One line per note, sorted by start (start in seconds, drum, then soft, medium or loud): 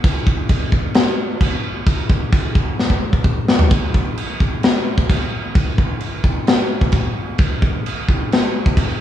0.04 kick loud
0.04 china medium
0.27 kick medium
0.49 kick medium
0.49 china medium
0.72 kick medium
0.94 snare loud
0.94 china medium
1.41 kick medium
1.41 china medium
1.86 kick loud
1.86 china medium
2.10 kick medium
2.32 kick medium
2.32 china medium
2.55 kick medium
2.79 snare medium
2.90 kick medium
3.13 kick medium
3.24 kick medium
3.48 snare medium
3.59 floor tom medium
3.70 kick loud
3.70 china medium
3.94 kick medium
4.17 china medium
4.40 kick medium
4.63 snare loud
4.63 china medium
4.98 kick medium
5.10 kick medium
5.10 china medium
5.55 kick loud
5.55 china medium
5.78 kick medium
6.00 china medium
6.24 kick medium
6.47 snare loud
6.47 china medium
6.81 kick medium
6.92 kick medium
6.92 china medium
7.38 kick loud
7.38 china medium
7.62 kick medium
7.86 china medium
8.09 kick medium
8.32 snare medium
8.32 china medium
8.66 kick medium
8.77 kick medium
8.77 china medium